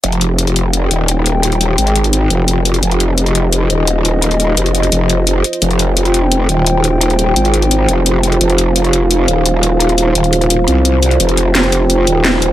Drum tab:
HH |xxx-xxx-x-x-x-x-|xxx-xxxxx-x-x-xx|xxx-xxx-x-x-x-x-|xxx-xxxxx-x-x-xx|
SD |----------------|----------------|----------------|----------------|

HH |xxx-xxx-x-x-x-x-|xxx-xxxxx-x-x-xx|xxx-xxx-x-x-x-x-|xxx-xxxxx-x-x-xx|
SD |----------------|----------------|----------------|----------------|

HH |xxx-xxx-x-x-x-x-|
SD |----o-------o---|